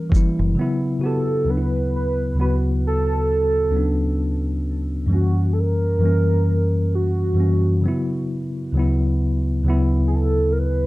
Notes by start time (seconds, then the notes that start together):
Already playing: A#4
0.10 E3 G3, kick
0.14 A#3 E4, shaker
0.39 F#1
0.55 C#3 F#3
0.59 B3 E4
0.99 C#3 F#4
1.04 B3 G4 A4
1.44 D2 C#3 F#3
1.49 B3 D4 B4
1.57 E4
1.96 B4
2.35 D2 C#3 F#3
2.40 B3 F#4 B4
2.87 A4
3.70 D2 F#3 C#4
3.75 B3 D4
5.06 F#2 E3 G3
5.11 A#3 C#4 F#4
5.53 A4
5.59 A#4
5.99 F#2 E3 G3
6.04 A#3 C#4
6.95 F#4
7.33 F#2 E3 G3
7.38 A#3 C#4
7.82 C#3 F#3
7.86 B3 E4
8.72 D2 C#3 F#3
8.77 B3 E4
9.63 D2 C#3 F#3
9.68 B3 E4
10.07 G#4
10.15 A4
10.52 A#4
10.59 B4